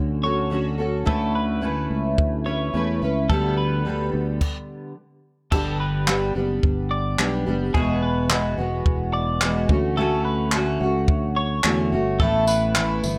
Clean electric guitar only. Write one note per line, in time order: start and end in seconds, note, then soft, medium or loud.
0.24 0.66 C#5 medium
1.07 1.34 A4 medium
1.35 1.88 B4 medium
2.46 2.88 C#5 medium
3.29 3.56 A4 medium
3.57 4.10 B4 medium
5.52 5.79 A4 medium
5.80 6.32 B4 medium
6.91 7.33 D5 medium
7.74 8.01 G#4 medium
8.03 8.55 B4 medium
9.14 9.56 D5 medium
9.97 10.24 A4 medium
10.25 10.77 B4 medium
11.37 11.78 C#5 medium
12.20 12.46 A4 medium
12.48 13.00 B4 medium